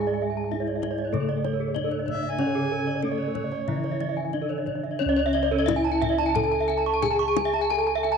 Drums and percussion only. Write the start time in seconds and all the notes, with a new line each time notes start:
0.68 kendang slap
0.83 kendang high, kendang low
0.98 kendang slap
1.13 kendang low
1.29 kendang slap
1.45 kendang high
1.76 kendang high, kendang low
1.91 kendang slap
2.08 kendang low
2.23 kendang slap
2.39 kendang high
2.87 kendang slap
3.02 kendang low
3.35 kendang high, kendang low
3.52 kendang slap
3.68 kendang low
3.84 kendang slap
4.00 kendang high
4.17 kendang slap
4.33 kendang high
4.50 kendang slap
4.67 kendang low
4.84 kendang slap
5.34 kendang slap
5.68 kendang high, kendang low
6.02 kendang low
6.35 kendang low
6.69 kendang slap
7.03 kendang slap, kendang high, kendang low
7.37 kendang slap, kendang high
7.53 kendang slap
8.04 kendang slap